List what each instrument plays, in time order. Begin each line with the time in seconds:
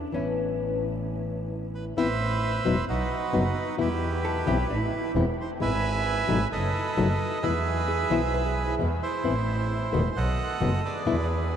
Already playing: hollow-body jazz guitar D4
0.12 double bass A1, nylon-string guitar E3 B3 C#4 E4, hollow-body jazz guitar C#4
1.75 bandoneon B4
1.97 double bass A1, nylon-string guitar E3 B3 C4 E4, bandoneon B4 C5 E5
2.65 double bass E1, nylon-string guitar B2 F#3 B3 D#4 F#4
2.88 double bass B1, bandoneon D#4 F#4 B4
3.33 double bass F#1, nylon-string guitar B2 F#3 B3 D#4 F#4
3.78 double bass E2, nylon-string guitar B2 E3 G3 B3 E4, bandoneon E4 G4 B4
4.25 hollow-body jazz guitar A4
4.47 double bass B1, nylon-string guitar E3 B3 C4 E4, hollow-body jazz guitar G4
4.69 double bass A1, hollow-body jazz guitar E4
5.15 double bass E1, nylon-string guitar E3 B3 C4 E4
5.41 bandoneon C5
5.60 double bass G#1, nylon-string guitar G#3 B3 E4, bandoneon B4 E5 G#5
6.28 double bass G#1, nylon-string guitar B2 F#3 A3 D#4 F#4
6.52 double bass F#1, bandoneon A4 B4 D#5
6.97 double bass F#1, nylon-string guitar B2 F#3 A3 D#4 F#4
7.42 double bass E2, nylon-string guitar B2 E3 G#3 B3 E4, bandoneon G#4 B4 E5
7.88 hollow-body jazz guitar G#4
8.10 double bass B1, nylon-string guitar B2 E3 G#3 B3 E4, hollow-body jazz guitar C5
8.34 hollow-body jazz guitar B4
8.46 hollow-body jazz guitar G#4
8.79 double bass E2, nylon-string guitar B2 E3 G#3 B3 E4
9.03 bandoneon E4 C5
9.24 double bass A1, nylon-string guitar E3 B3 C4 E4
9.92 double bass E1, nylon-string guitar B2 D#3 A3 B3 F#4
10.16 double bass B1, bandoneon A4 D#5 F#5
10.61 double bass F#1, nylon-string guitar B2 D#3 A3 B3 F#4
10.85 bandoneon G#4 B4 D5
11.06 double bass E2, nylon-string guitar B2 D3 G#3 B3 E4